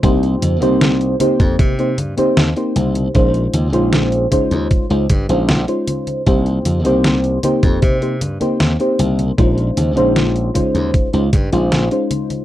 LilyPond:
<<
  \new Staff \with { instrumentName = "FM electric piano" } { \time 4/4 \key bes \dorian \tempo 4 = 77 <bes c' ees' g' c''>8. <bes c' ees' g' c''>8. <bes c' ees' g' c''>8. <bes c' ees' g' c''>16 r16 <bes c' ees' g' c''>8 <bes c' ees' g' c''>8. | <aes des' ees' f' c''>8. <aes des' ees' f' c''>8. <aes des' ees' f' c''>8. <aes des' ees' f' c''>16 r16 <aes des' ees' f' c''>8 <aes des' ees' f' c''>8. | <bes c' ees' g' c''>8. <bes c' ees' g' c''>8. <bes c' ees' g' c''>8. <bes c' ees' g' c''>16 r16 <bes c' ees' g' c''>8 <bes c' ees' g' c''>8. | <aes des' ees' f' c''>8. <aes des' ees' f' c''>8. <aes des' ees' f' c''>8. <aes des' ees' f' c''>16 r16 <aes des' ees' f' c''>8 <aes des' ees' f' c''>8. | }
  \new Staff \with { instrumentName = "Slap bass" } { \clef bass \time 4/4 \key bes \dorian c,8 f,16 c,8. r16 f,16 c8 g,16 r16 ees,16 r16 c,8 | bes,,8 ees,16 bes,,8. r16 ees,16 r16 des,16 g,16 bes,,16 bes,,16 r8. | c,8 f,16 c,8. r16 f,16 c8 g,16 r16 ees,16 r16 c,8 | bes,,8 ees,16 bes,,8. r16 ees,16 r16 des,16 g,16 bes,,16 bes,,16 r8. | }
  \new DrumStaff \with { instrumentName = "Drums" } \drummode { \time 4/4 <cgho hh bd>16 hh16 <cgho hh>16 <cgho hh>16 <cgho hh sn>16 hh16 <cgho hh>16 <cgho hh bd>16 <cgho hh bd>16 hh16 <cgho hh>16 <cgho hh>16 <cgho hh sn>16 hh16 <cgho hh>16 <cgho hh>16 | <cgho hh bd>16 hh16 <cgho hh>16 <cgho hh>16 <cgho hh sn>16 hh16 <cgho hh bd>16 <cgho hh>16 <cgho hh bd>16 hh16 <cgho hh bd>16 <cgho hh>16 <cgho hh sn>16 hh16 <cgho hh>16 <cgho hh>16 | <cgho hh bd>16 hh16 <cgho hh>16 <cgho hh>16 <cgho hh sn>16 hh16 <cgho hh>16 <cgho hh bd>16 <cgho hh bd>16 hh16 <cgho hh>16 <cgho hh>16 <cgho hh sn>16 hh16 <cgho hh>16 <cgho hh>16 | <cgho hh bd>16 hh16 <cgho hh>16 <cgho hh>16 <cgho hh sn>16 hh16 <cgho hh bd>16 <cgho hh>16 <cgho hh bd>16 hh16 <cgho hh bd>16 <cgho hh>16 <cgho hh sn>16 hh16 <cgho hh>16 <cgho hh>16 | }
>>